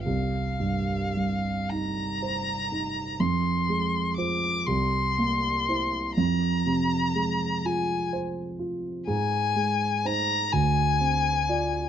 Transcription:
<<
  \new Staff \with { instrumentName = "Violin" } { \time 6/8 \key c \minor \tempo 4. = 41 f''4. bes''4. | c'''4 d'''8 c'''4. | bes''4. aes''8 r4 | aes''4 bes''8 aes''4. | }
  \new Staff \with { instrumentName = "Grand piano" } { \time 6/8 \key c \minor c,8 g,8 g8 ees'8 c''8 ees'8 | f,8 aes8 <f' c''>8 c,8 bes8 <e' c''>8 | f,8 c8 aes8 f'8 c''8 f'8 | aes,8 aes8 <ees' c''>8 d,8 c'8 <f' d''>8 | }
>>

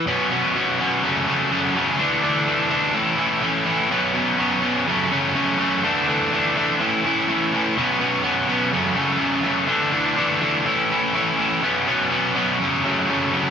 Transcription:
\new Staff \with { instrumentName = "Distorted electric guitar" } { \clef bass \time 4/4 \key b \dorian \tempo 4 = 124 <b, fis b cis'>8 <b, fis b cis'>8 <b, fis b cis'>8 <b, fis b cis'>8 <fis, cis fis a cis'>8 <fis, cis fis a cis'>8 <fis, cis fis a cis'>8 <fis, cis fis a cis'>8 | <d e a d'>8 <d e a d'>8 <d e a d'>8 <d e a d'>8 <a, e a cis' e'>8 <a, e a cis' e'>8 <a, e a cis' e'>8 <a, e a cis' e'>8 | <b, fis b cis'>8 <b, fis b cis'>8 <b, fis b cis'>8 <b, fis b cis'>8 <fis, cis fis a cis'>8 <fis, cis fis a cis'>8 <fis, cis fis a cis'>8 <fis, cis fis a cis'>8 | <d e a d'>8 <d e a d'>8 <d e a d'>8 <d e a d'>8 <a, e a cis' e'>8 <a, e a cis' e'>8 <a, e a cis' e'>8 <a, e a cis' e'>8 |
<b, fis b cis'>8 <b, fis b cis'>8 <b, fis b cis'>8 <b, fis b cis'>8 <fis, cis fis a cis'>8 <fis, cis fis a cis'>8 <fis, cis fis a cis'>8 <fis, cis fis a cis'>8 | <d e a d'>8 <d e a d'>8 <d e a d'>8 <d e a d'>8 <a, e a cis' e'>8 <a, e a cis' e'>8 <a, e a cis' e'>8 <a, e a cis' e'>8 | <b, fis b cis'>8 <b, fis b cis'>8 <b, fis b cis'>8 <b, fis b cis'>8 <fis, cis fis a cis'>8 <fis, cis fis a cis'>8 <fis, cis fis a cis'>8 <fis, cis fis a cis'>8 | }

